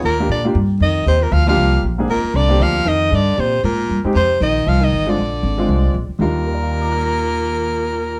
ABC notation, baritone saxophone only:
X:1
M:4/4
L:1/8
Q:"Swing" 1/4=234
K:Eb
V:1 name="Baritone saxophone" clef=bass
B,,2 D, z3 E,2 | C, B,, F, F,3 z2 | B,,2 D,2 F,2 E,2 | D,2 C,2 B,,3 z |
C,2 E,2 F, E,2 D,- | D,6 z2 | B,,8- | B,,8 |]